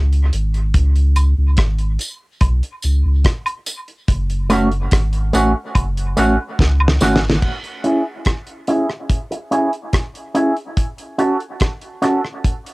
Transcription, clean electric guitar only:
0, 0, Header, 1, 3, 480
1, 0, Start_track
1, 0, Key_signature, 4, "minor"
1, 0, Tempo, 835655
1, 427, Time_signature, 4, 2, 24, 8
1, 7316, End_track
2, 0, Start_track
2, 0, Title_t, "Clean electric guitar"
2, 0, Program_c, 0, 27
2, 2582, Note_on_c, 0, 57, 91
2, 2587, Note_on_c, 0, 61, 94
2, 2594, Note_on_c, 0, 66, 88
2, 2682, Note_off_c, 0, 57, 0
2, 2685, Note_off_c, 0, 61, 0
2, 2688, Note_off_c, 0, 66, 0
2, 3063, Note_on_c, 0, 57, 79
2, 3068, Note_on_c, 0, 61, 80
2, 3073, Note_on_c, 0, 66, 89
2, 3163, Note_off_c, 0, 57, 0
2, 3165, Note_off_c, 0, 61, 0
2, 3168, Note_off_c, 0, 66, 0
2, 3542, Note_on_c, 0, 57, 93
2, 3550, Note_on_c, 0, 61, 103
2, 3555, Note_on_c, 0, 66, 104
2, 3642, Note_off_c, 0, 57, 0
2, 3646, Note_off_c, 0, 61, 0
2, 3649, Note_off_c, 0, 66, 0
2, 4027, Note_on_c, 0, 57, 71
2, 4032, Note_on_c, 0, 61, 78
2, 4039, Note_on_c, 0, 66, 92
2, 4124, Note_off_c, 0, 57, 0
2, 4127, Note_off_c, 0, 61, 0
2, 4130, Note_off_c, 0, 66, 0
2, 4503, Note_on_c, 0, 61, 85
2, 4509, Note_on_c, 0, 64, 84
2, 4514, Note_on_c, 0, 68, 82
2, 4603, Note_off_c, 0, 61, 0
2, 4605, Note_off_c, 0, 64, 0
2, 4608, Note_off_c, 0, 68, 0
2, 4986, Note_on_c, 0, 61, 75
2, 4991, Note_on_c, 0, 64, 87
2, 4997, Note_on_c, 0, 68, 91
2, 5084, Note_off_c, 0, 61, 0
2, 5087, Note_off_c, 0, 64, 0
2, 5089, Note_off_c, 0, 68, 0
2, 5463, Note_on_c, 0, 61, 77
2, 5468, Note_on_c, 0, 64, 80
2, 5473, Note_on_c, 0, 68, 88
2, 5563, Note_off_c, 0, 61, 0
2, 5565, Note_off_c, 0, 64, 0
2, 5568, Note_off_c, 0, 68, 0
2, 5942, Note_on_c, 0, 61, 86
2, 5948, Note_on_c, 0, 64, 84
2, 5954, Note_on_c, 0, 68, 89
2, 6043, Note_off_c, 0, 61, 0
2, 6046, Note_off_c, 0, 64, 0
2, 6048, Note_off_c, 0, 68, 0
2, 6423, Note_on_c, 0, 61, 83
2, 6428, Note_on_c, 0, 66, 86
2, 6433, Note_on_c, 0, 69, 86
2, 6523, Note_off_c, 0, 61, 0
2, 6525, Note_off_c, 0, 66, 0
2, 6528, Note_off_c, 0, 69, 0
2, 6903, Note_on_c, 0, 61, 87
2, 6909, Note_on_c, 0, 66, 83
2, 6915, Note_on_c, 0, 69, 90
2, 7003, Note_off_c, 0, 61, 0
2, 7006, Note_off_c, 0, 66, 0
2, 7009, Note_off_c, 0, 69, 0
2, 7316, End_track
3, 0, Start_track
3, 0, Title_t, "Muted clean electric guitar strokes"
3, 4147, Note_on_c, 9, 29, 45
3, 4205, Note_off_c, 9, 29, 0
3, 5107, Note_on_c, 9, 29, 43
3, 5164, Note_off_c, 9, 29, 0
3, 5347, Note_on_c, 9, 29, 43
3, 5404, Note_off_c, 9, 29, 0
3, 7316, End_track
0, 0, End_of_file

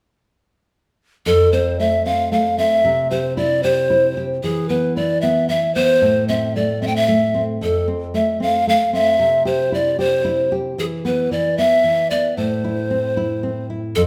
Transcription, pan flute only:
0, 0, Header, 1, 2, 480
1, 0, Start_track
1, 0, Key_signature, 0, "minor"
1, 0, Tempo, 529101
1, 1146, Time_signature, 6, 3, 24, 8
1, 12762, End_track
2, 0, Start_track
2, 0, Title_t, "Pan flute"
2, 0, Program_c, 0, 75
2, 1145, Note_on_c, 0, 69, 92
2, 1368, Note_off_c, 0, 69, 0
2, 1385, Note_on_c, 0, 72, 77
2, 1608, Note_off_c, 0, 72, 0
2, 1628, Note_on_c, 0, 76, 81
2, 1862, Note_on_c, 0, 77, 95
2, 1876, Note_off_c, 0, 76, 0
2, 2103, Note_off_c, 0, 77, 0
2, 2108, Note_on_c, 0, 77, 80
2, 2341, Note_on_c, 0, 76, 97
2, 2355, Note_off_c, 0, 77, 0
2, 2812, Note_off_c, 0, 76, 0
2, 2817, Note_on_c, 0, 72, 75
2, 3043, Note_off_c, 0, 72, 0
2, 3058, Note_on_c, 0, 74, 79
2, 3294, Note_on_c, 0, 72, 86
2, 3308, Note_off_c, 0, 74, 0
2, 3838, Note_off_c, 0, 72, 0
2, 4021, Note_on_c, 0, 68, 80
2, 4254, Note_on_c, 0, 71, 74
2, 4268, Note_off_c, 0, 68, 0
2, 4495, Note_off_c, 0, 71, 0
2, 4500, Note_on_c, 0, 74, 76
2, 4724, Note_off_c, 0, 74, 0
2, 4729, Note_on_c, 0, 76, 90
2, 4958, Note_off_c, 0, 76, 0
2, 4977, Note_on_c, 0, 76, 78
2, 5203, Note_off_c, 0, 76, 0
2, 5215, Note_on_c, 0, 72, 84
2, 5664, Note_off_c, 0, 72, 0
2, 5702, Note_on_c, 0, 76, 71
2, 5947, Note_on_c, 0, 74, 68
2, 5961, Note_off_c, 0, 76, 0
2, 6188, Note_on_c, 0, 76, 75
2, 6202, Note_off_c, 0, 74, 0
2, 6235, Note_on_c, 0, 79, 68
2, 6248, Note_off_c, 0, 76, 0
2, 6315, Note_on_c, 0, 76, 88
2, 6329, Note_off_c, 0, 79, 0
2, 6724, Note_off_c, 0, 76, 0
2, 6925, Note_on_c, 0, 69, 70
2, 7137, Note_off_c, 0, 69, 0
2, 7396, Note_on_c, 0, 76, 77
2, 7612, Note_off_c, 0, 76, 0
2, 7640, Note_on_c, 0, 77, 95
2, 7854, Note_off_c, 0, 77, 0
2, 7884, Note_on_c, 0, 77, 80
2, 8097, Note_off_c, 0, 77, 0
2, 8114, Note_on_c, 0, 76, 90
2, 8554, Note_off_c, 0, 76, 0
2, 8588, Note_on_c, 0, 72, 75
2, 8837, Note_on_c, 0, 74, 82
2, 8850, Note_off_c, 0, 72, 0
2, 9064, Note_off_c, 0, 74, 0
2, 9069, Note_on_c, 0, 72, 88
2, 9569, Note_off_c, 0, 72, 0
2, 9793, Note_on_c, 0, 68, 81
2, 9847, Note_off_c, 0, 68, 0
2, 10036, Note_on_c, 0, 71, 72
2, 10270, Note_on_c, 0, 74, 79
2, 10283, Note_off_c, 0, 71, 0
2, 10501, Note_on_c, 0, 76, 92
2, 10515, Note_off_c, 0, 74, 0
2, 10981, Note_on_c, 0, 74, 77
2, 10995, Note_off_c, 0, 76, 0
2, 11220, Note_off_c, 0, 74, 0
2, 11225, Note_on_c, 0, 72, 82
2, 12387, Note_off_c, 0, 72, 0
2, 12658, Note_on_c, 0, 69, 84
2, 12713, Note_off_c, 0, 69, 0
2, 12762, End_track
0, 0, End_of_file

